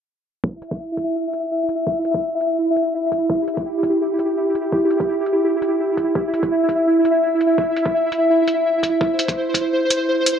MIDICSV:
0, 0, Header, 1, 3, 480
1, 0, Start_track
1, 0, Tempo, 357143
1, 594, Time_signature, 4, 2, 24, 8
1, 13967, End_track
2, 0, Start_track
2, 0, Title_t, "Synth texture"
2, 0, Program_c, 0, 99
2, 592, Note_on_c, 0, 64, 81
2, 595, Note_on_c, 0, 76, 80
2, 4433, Note_on_c, 0, 67, 81
2, 4461, Note_off_c, 0, 76, 0
2, 8275, Note_on_c, 0, 76, 84
2, 8300, Note_off_c, 0, 67, 0
2, 12113, Note_on_c, 0, 72, 85
2, 12141, Note_off_c, 0, 76, 0
2, 13967, Note_off_c, 0, 64, 0
2, 13967, Note_off_c, 0, 72, 0
2, 13967, End_track
3, 0, Start_track
3, 0, Title_t, "Drums"
3, 588, Note_on_c, 9, 36, 105
3, 723, Note_off_c, 9, 36, 0
3, 832, Note_on_c, 9, 42, 75
3, 959, Note_on_c, 9, 36, 100
3, 966, Note_off_c, 9, 42, 0
3, 966, Note_on_c, 9, 42, 35
3, 1093, Note_off_c, 9, 36, 0
3, 1100, Note_off_c, 9, 42, 0
3, 1308, Note_on_c, 9, 36, 56
3, 1313, Note_on_c, 9, 42, 58
3, 1443, Note_off_c, 9, 36, 0
3, 1447, Note_off_c, 9, 42, 0
3, 1792, Note_on_c, 9, 42, 70
3, 1927, Note_off_c, 9, 42, 0
3, 2270, Note_on_c, 9, 42, 65
3, 2404, Note_off_c, 9, 42, 0
3, 2510, Note_on_c, 9, 36, 110
3, 2644, Note_off_c, 9, 36, 0
3, 2753, Note_on_c, 9, 42, 74
3, 2881, Note_on_c, 9, 36, 104
3, 2888, Note_off_c, 9, 42, 0
3, 2888, Note_on_c, 9, 42, 34
3, 3016, Note_off_c, 9, 36, 0
3, 3022, Note_off_c, 9, 42, 0
3, 3237, Note_on_c, 9, 42, 64
3, 3371, Note_off_c, 9, 42, 0
3, 3715, Note_on_c, 9, 42, 72
3, 3850, Note_off_c, 9, 42, 0
3, 4191, Note_on_c, 9, 36, 53
3, 4196, Note_on_c, 9, 42, 64
3, 4325, Note_off_c, 9, 36, 0
3, 4330, Note_off_c, 9, 42, 0
3, 4430, Note_on_c, 9, 36, 111
3, 4565, Note_off_c, 9, 36, 0
3, 4672, Note_on_c, 9, 42, 75
3, 4801, Note_off_c, 9, 42, 0
3, 4801, Note_on_c, 9, 36, 103
3, 4801, Note_on_c, 9, 42, 34
3, 4936, Note_off_c, 9, 36, 0
3, 4936, Note_off_c, 9, 42, 0
3, 5150, Note_on_c, 9, 36, 61
3, 5155, Note_on_c, 9, 42, 61
3, 5284, Note_off_c, 9, 36, 0
3, 5289, Note_off_c, 9, 42, 0
3, 5632, Note_on_c, 9, 42, 73
3, 5767, Note_off_c, 9, 42, 0
3, 6117, Note_on_c, 9, 42, 63
3, 6251, Note_off_c, 9, 42, 0
3, 6349, Note_on_c, 9, 36, 112
3, 6484, Note_off_c, 9, 36, 0
3, 6594, Note_on_c, 9, 42, 71
3, 6721, Note_on_c, 9, 36, 104
3, 6726, Note_off_c, 9, 42, 0
3, 6726, Note_on_c, 9, 42, 33
3, 6855, Note_off_c, 9, 36, 0
3, 6860, Note_off_c, 9, 42, 0
3, 7074, Note_on_c, 9, 42, 59
3, 7208, Note_off_c, 9, 42, 0
3, 7553, Note_on_c, 9, 42, 70
3, 7688, Note_off_c, 9, 42, 0
3, 8029, Note_on_c, 9, 36, 57
3, 8033, Note_on_c, 9, 42, 59
3, 8164, Note_off_c, 9, 36, 0
3, 8167, Note_off_c, 9, 42, 0
3, 8270, Note_on_c, 9, 36, 111
3, 8404, Note_off_c, 9, 36, 0
3, 8516, Note_on_c, 9, 42, 70
3, 8640, Note_on_c, 9, 36, 98
3, 8644, Note_off_c, 9, 42, 0
3, 8644, Note_on_c, 9, 42, 32
3, 8775, Note_off_c, 9, 36, 0
3, 8779, Note_off_c, 9, 42, 0
3, 8989, Note_on_c, 9, 36, 58
3, 8992, Note_on_c, 9, 42, 55
3, 9123, Note_off_c, 9, 36, 0
3, 9127, Note_off_c, 9, 42, 0
3, 9474, Note_on_c, 9, 42, 67
3, 9608, Note_off_c, 9, 42, 0
3, 9956, Note_on_c, 9, 42, 60
3, 10090, Note_off_c, 9, 42, 0
3, 10189, Note_on_c, 9, 36, 102
3, 10324, Note_off_c, 9, 36, 0
3, 10436, Note_on_c, 9, 42, 74
3, 10558, Note_on_c, 9, 36, 96
3, 10571, Note_off_c, 9, 42, 0
3, 10693, Note_off_c, 9, 36, 0
3, 10913, Note_on_c, 9, 42, 55
3, 11048, Note_off_c, 9, 42, 0
3, 11391, Note_on_c, 9, 42, 71
3, 11526, Note_off_c, 9, 42, 0
3, 11869, Note_on_c, 9, 36, 51
3, 11873, Note_on_c, 9, 42, 58
3, 12003, Note_off_c, 9, 36, 0
3, 12007, Note_off_c, 9, 42, 0
3, 12108, Note_on_c, 9, 36, 105
3, 12243, Note_off_c, 9, 36, 0
3, 12352, Note_on_c, 9, 42, 75
3, 12478, Note_on_c, 9, 36, 93
3, 12486, Note_off_c, 9, 42, 0
3, 12486, Note_on_c, 9, 42, 34
3, 12612, Note_off_c, 9, 36, 0
3, 12621, Note_off_c, 9, 42, 0
3, 12827, Note_on_c, 9, 36, 58
3, 12833, Note_on_c, 9, 42, 57
3, 12961, Note_off_c, 9, 36, 0
3, 12967, Note_off_c, 9, 42, 0
3, 13311, Note_on_c, 9, 42, 71
3, 13446, Note_off_c, 9, 42, 0
3, 13795, Note_on_c, 9, 42, 61
3, 13929, Note_off_c, 9, 42, 0
3, 13967, End_track
0, 0, End_of_file